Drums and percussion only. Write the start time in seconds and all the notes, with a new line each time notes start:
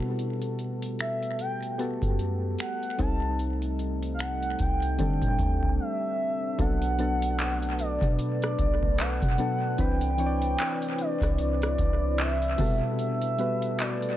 0.19 closed hi-hat
0.42 closed hi-hat
0.59 closed hi-hat
0.82 closed hi-hat
0.99 finger snap, closed hi-hat
1.23 closed hi-hat
1.39 closed hi-hat
1.63 closed hi-hat
1.79 closed hi-hat
2.02 kick, closed hi-hat
2.19 closed hi-hat
2.59 finger snap, closed hi-hat
2.83 closed hi-hat
2.99 kick, closed hi-hat
3.39 closed hi-hat
3.62 closed hi-hat
3.79 closed hi-hat
4.02 closed hi-hat
4.19 finger snap, closed hi-hat
4.43 closed hi-hat
4.59 kick, closed hi-hat
4.82 closed hi-hat
4.99 kick, closed hi-hat
5.22 kick, closed hi-hat
5.39 kick, closed hi-hat
5.63 kick
6.59 kick, closed hi-hat
6.82 closed hi-hat
6.99 closed hi-hat
7.22 closed hi-hat
7.39 clap, closed hi-hat
7.63 closed hi-hat
7.79 closed hi-hat
8.01 kick, closed hi-hat
8.19 closed hi-hat
8.42 cross-stick, closed hi-hat
8.59 kick, closed hi-hat
8.83 kick
8.98 clap, closed hi-hat
9.22 kick, closed hi-hat
9.38 closed hi-hat
9.78 kick, closed hi-hat
10.01 closed hi-hat
10.18 closed hi-hat
10.42 closed hi-hat
10.59 clap, closed hi-hat
10.82 closed hi-hat
10.98 closed hi-hat
11.21 kick, cross-stick, closed hi-hat
11.38 closed hi-hat
11.62 cross-stick, closed hi-hat
11.78 kick, closed hi-hat
12.18 clap, closed hi-hat
12.42 closed hi-hat
12.58 kick, open hi-hat
12.99 closed hi-hat
13.22 closed hi-hat
13.39 closed hi-hat
13.62 closed hi-hat
13.79 clap, closed hi-hat
14.02 closed hi-hat